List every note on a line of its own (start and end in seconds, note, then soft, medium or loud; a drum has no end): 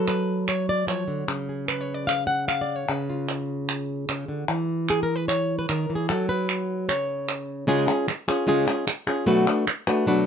0.00 0.87 F#3 medium
0.00 0.47 A4 medium
0.08 0.48 B4 medium
0.08 clap medium
0.48 0.68 C#5 medium
0.48 clap medium
0.69 0.88 D5 medium
0.87 1.07 F3 soft
0.87 1.28 C#5 medium
0.87 clap medium
1.08 1.28 D3 soft
1.28 2.88 C#3 medium
1.28 clap soft
1.49 1.68 G#4 soft
1.68 2.21 B4 medium
1.68 clap medium
1.81 1.94 C#5 medium
1.94 2.08 D5 medium
2.07 2.27 F5 medium
2.07 clap medium
2.27 2.47 F#5 medium
2.48 3.01 F5 medium
2.48 clap medium
2.61 2.76 D5 medium
2.76 2.89 C#5 medium
2.89 4.08 C#3 medium
2.89 3.69 B4 medium
3.10 4.46 F4 soft
3.29 clap medium
3.69 clap medium
4.09 4.28 C#3 medium
4.09 clap medium
4.28 4.48 D3 soft
4.48 5.68 E3 medium
4.89 5.02 G#4 medium
4.89 clap medium
5.03 5.16 A#4 medium
5.16 5.28 B4 medium
5.28 5.58 C#5 medium
5.28 clap medium
5.59 5.68 B4 medium
5.69 5.89 D#3 medium
5.69 5.95 A#4 medium
5.69 clap medium
5.90 6.09 E3 soft
5.95 6.08 G#4 medium
6.10 6.89 F#3 medium
6.10 6.29 A4 medium
6.29 6.88 B4 medium
6.49 clap medium
6.89 7.66 C#3 medium
6.89 7.68 C#5 medium
6.89 clap medium
7.29 clap medium
7.67 7.87 C#3 medium
7.67 7.87 G#3 medium
7.67 7.87 C#4 medium
7.67 7.87 F4 medium
7.67 7.87 G#4 medium
7.88 8.08 C#4 soft
7.88 8.07 F4 soft
7.88 8.07 G#4 soft
8.08 muted nylon-string guitar stroke medium
8.08 clap medium
8.28 8.47 C#4 soft
8.28 8.47 F4 medium
8.28 8.47 G#4 medium
8.47 8.66 C#3 medium
8.47 8.67 G#3 medium
8.47 8.67 C#4 medium
8.47 8.67 F4 medium
8.47 8.66 G#4 medium
8.67 8.86 C#4 soft
8.67 8.86 F4 soft
8.67 8.86 G#4 medium
8.87 muted nylon-string guitar stroke medium
8.87 clap medium
9.07 9.27 C#4 soft
9.07 9.27 F4 soft
9.07 9.26 G#4 soft
9.26 9.46 B2 medium
9.26 9.46 F#3 medium
9.26 9.46 A3 medium
9.26 9.46 D4 medium
9.26 9.46 F#4 medium
9.26 9.46 B4 medium
9.47 9.66 A3 soft
9.47 9.66 D4 medium
9.47 9.66 F#4 medium
9.47 9.66 B4 medium
9.67 muted nylon-string guitar stroke medium
9.67 clap medium
9.87 10.06 A3 soft
9.87 10.06 D4 soft
9.87 10.06 F#4 medium
9.87 10.06 B4 medium
10.06 10.26 B2 medium
10.06 10.26 F#3 medium
10.06 10.26 A3 medium
10.06 10.26 D4 medium
10.06 10.26 F#4 medium
10.06 10.26 B4 medium